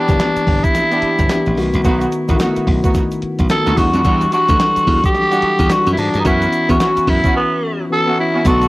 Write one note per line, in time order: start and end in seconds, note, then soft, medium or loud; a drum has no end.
0.00 0.09 E3 medium
0.00 0.16 B3 medium
0.00 0.10 D4 medium
0.00 0.65 D4 medium
0.00 0.10 G4 medium
0.08 0.17 F#1 medium
0.08 1.03 E3 medium
0.08 0.14 A#3 medium
0.08 1.03 D4 medium
0.08 1.03 G4 medium
0.08 kick medium
0.08 closed hi-hat medium
0.08 shaker medium
0.16 1.06 B3 medium
0.16 shaker medium
0.20 snare loud
0.20 clap medium
0.20 closed hi-hat medium
0.36 muted slap bass stroke soft
0.36 closed hi-hat medium
0.36 shaker soft
0.47 0.59 G1 medium
0.47 kick loud
0.47 open hi-hat medium
0.64 1.57 E4 loud
0.64 kick loud
0.64 closed hi-hat medium
0.64 shaker medium
0.75 snare medium
0.75 closed hi-hat medium
0.75 shaker medium
0.91 1.04 B3 medium
0.91 1.04 D4 medium
0.91 1.04 E4 medium
0.91 1.04 G4 medium
0.91 closed hi-hat soft
0.91 shaker medium
1.02 muted slap bass stroke soft
1.02 closed hi-hat medium
1.19 1.27 G1 medium
1.19 kick medium
1.19 closed hi-hat medium
1.19 shaker soft
1.29 1.57 E3 medium
1.29 1.57 B3 medium
1.29 1.58 D4 medium
1.29 1.58 G4 loud
1.29 snare loud
1.29 clap medium
1.29 closed hi-hat medium
1.29 shaker medium
1.46 1.55 A1 medium
1.46 closed hi-hat medium
1.46 shaker soft
1.57 1.70 B1 loud
1.57 2.19 D#3 loud
1.57 2.19 A3 medium
1.57 2.19 B3 medium
1.57 2.20 F#4 loud
1.57 open hi-hat medium
1.57 shaker soft
1.73 1.82 C2 medium
1.73 closed hi-hat medium
1.73 shaker soft
1.84 2.05 B1 loud
1.84 2.02 A3 medium
1.84 2.02 B3 medium
1.84 2.02 D#4 medium
1.84 2.03 F#4 loud
1.84 kick loud
1.84 closed hi-hat medium
1.84 shaker medium
2.01 closed hi-hat soft
2.01 shaker soft
2.12 closed hi-hat medium
2.12 shaker medium
2.28 2.37 A1 medium
2.28 3.23 D#3 medium
2.28 2.39 A3 medium
2.28 3.23 A3 medium
2.28 2.39 B3 medium
2.28 3.23 B3 medium
2.28 2.39 D#4 medium
2.28 2.35 E4 medium
2.28 2.39 F#4 medium
2.28 kick medium
2.28 closed hi-hat medium
2.28 shaker medium
2.37 2.58 A3 medium
2.37 2.58 B3 medium
2.37 2.58 D#4 medium
2.37 3.27 F#4 loud
2.37 2.58 F#4 medium
2.37 snare loud
2.37 clap medium
2.37 closed hi-hat medium
2.37 shaker medium
2.56 muted slap bass stroke soft
2.56 closed hi-hat medium
2.56 shaker soft
2.67 2.79 B1 loud
2.67 kick loud
2.67 open hi-hat medium
2.84 2.97 A3 medium
2.84 2.97 B3 medium
2.84 2.97 D#4 medium
2.84 2.97 F#4 medium
2.84 kick loud
2.84 closed hi-hat medium
2.84 shaker medium
2.94 kick medium
2.94 snare medium
2.94 closed hi-hat medium
2.94 shaker medium
3.11 closed hi-hat soft
3.11 shaker soft
3.22 muted slap bass stroke soft
3.22 closed hi-hat medium
3.39 3.47 B1 medium
3.39 kick medium
3.39 closed hi-hat medium
3.39 shaker medium
3.49 3.77 D#3 medium
3.49 3.78 A3 medium
3.49 3.78 B3 medium
3.49 3.77 F#4 medium
3.49 3.79 A4 loud
3.49 snare loud
3.49 clap medium
3.49 closed hi-hat medium
3.49 shaker medium
3.66 3.75 D2 medium
3.66 3.79 A3 medium
3.66 3.79 B3 medium
3.66 3.79 D#4 medium
3.66 3.79 F#4 medium
3.66 closed hi-hat medium
3.66 shaker soft
3.77 3.90 E2 loud
3.77 4.39 E3 medium
3.77 4.39 G3 medium
3.77 4.39 D4 medium
3.77 4.33 F#4 loud
3.77 4.39 F#4 medium
3.77 kick medium
3.77 open hi-hat medium
3.77 shaker medium
3.93 4.02 F2 medium
3.93 4.03 G3 medium
3.93 4.03 D4 medium
3.93 4.03 E4 medium
3.93 4.03 F#4 medium
3.93 closed hi-hat medium
3.93 shaker soft
4.04 4.25 E2 loud
4.04 4.22 G3 loud
4.04 4.22 D4 medium
4.04 4.22 E4 medium
4.04 4.23 F#4 loud
4.04 kick loud
4.04 closed hi-hat medium
4.04 shaker medium
4.21 closed hi-hat soft
4.21 shaker soft
4.32 4.50 G3 medium
4.32 4.50 D4 medium
4.32 4.50 E4 medium
4.32 4.50 F#4 medium
4.32 5.00 F#4 loud
4.32 closed hi-hat medium
4.32 shaker medium
4.48 4.57 D2 loud
4.48 5.43 E3 medium
4.48 4.54 F#3 medium
4.48 5.44 D4 medium
4.48 5.44 A4 medium
4.48 kick loud
4.48 closed hi-hat medium
4.48 shaker medium
4.56 5.47 G3 medium
4.56 snare loud
4.56 closed hi-hat medium
4.60 clap medium
4.60 shaker medium
4.76 muted slap bass stroke soft
4.76 closed hi-hat medium
4.76 shaker soft
4.87 4.99 E2 medium
4.87 kick loud
4.87 open hi-hat medium
5.04 5.73 G4 loud
5.04 kick loud
5.04 closed hi-hat medium
5.04 shaker medium
5.15 snare medium
5.15 closed hi-hat medium
5.15 shaker medium
5.31 5.44 G3 medium
5.31 5.44 D4 medium
5.31 5.44 E4 medium
5.31 5.44 F#4 medium
5.31 closed hi-hat soft
5.31 shaker medium
5.42 muted slap bass stroke soft
5.42 closed hi-hat medium
5.59 5.67 E2 medium
5.59 kick medium
5.59 closed hi-hat medium
5.59 shaker medium
5.70 6.20 E3 medium
5.70 6.20 G3 medium
5.70 6.20 D4 medium
5.70 5.78 F4 medium
5.70 5.92 F#4 loud
5.70 snare loud
5.70 clap medium
5.70 closed hi-hat medium
5.70 shaker medium
5.78 6.24 F#4 medium
5.87 5.95 F#2 medium
5.87 closed hi-hat medium
5.87 shaker medium
5.92 6.00 E4 medium
5.97 6.10 G#2 medium
5.97 6.21 D4 medium
5.97 open hi-hat medium
5.97 shaker medium
6.14 6.22 G2 medium
6.14 closed hi-hat medium
6.14 shaker soft
6.20 6.28 D#4 medium
6.24 6.45 F#2 loud
6.24 6.63 E3 medium
6.24 6.43 B3 medium
6.24 6.63 B3 medium
6.24 6.43 C#4 medium
6.24 6.64 C#4 medium
6.24 6.43 E4 medium
6.24 6.71 E4 loud
6.24 6.43 F#4 loud
6.24 6.64 F#4 medium
6.24 kick loud
6.24 closed hi-hat medium
6.24 shaker medium
6.42 closed hi-hat soft
6.42 shaker soft
6.53 closed hi-hat medium
6.53 shaker medium
6.69 6.77 E2 medium
6.69 7.63 E3 medium
6.69 6.78 B3 medium
6.69 7.63 B3 medium
6.69 6.79 C#4 medium
6.69 7.64 C#4 medium
6.69 6.79 E4 medium
6.69 6.79 F#4 medium
6.69 7.10 F#4 medium
6.69 7.64 F#4 medium
6.69 kick medium
6.69 closed hi-hat medium
6.69 shaker medium
6.80 6.98 B3 medium
6.80 6.98 C#4 medium
6.80 6.98 E4 medium
6.80 6.98 F#4 medium
6.80 snare loud
6.80 clap medium
6.80 closed hi-hat medium
6.80 shaker medium
6.97 muted slap bass stroke soft
6.97 closed hi-hat medium
6.97 shaker medium
7.07 7.20 F#2 loud
7.07 7.35 E4 medium
7.07 kick loud
7.07 open hi-hat medium
7.24 7.37 B3 medium
7.24 7.37 C#4 medium
7.24 7.37 E4 medium
7.24 7.37 F#4 medium
7.24 kick loud
7.24 closed hi-hat medium
7.24 shaker medium
7.36 7.87 B3 medium
7.90 8.40 E3 medium
7.90 8.40 B3 medium
7.90 8.40 C#4 medium
7.90 8.41 F#4 medium
7.90 8.17 A4 loud
8.06 8.19 B3 medium
8.06 8.19 C#4 medium
8.06 8.20 E4 medium
8.06 8.20 F#4 medium
8.20 8.49 E4 loud
8.34 8.44 B3 medium
8.34 8.47 C#4 medium
8.34 8.47 E4 medium
8.34 8.44 F#4 medium
8.45 8.65 B1 loud
8.45 8.68 D3 medium
8.45 8.68 F#3 medium
8.45 8.68 A3 medium
8.45 8.63 B3 loud
8.45 8.68 B3 medium
8.45 8.63 D4 medium
8.45 8.63 F#4 medium
8.45 8.68 F#4 medium
8.45 8.68 F#4 loud
8.45 8.63 A4 loud
8.45 kick loud
8.45 closed hi-hat medium
8.45 tambourine medium
8.45 shaker medium
8.62 closed hi-hat soft
8.62 shaker soft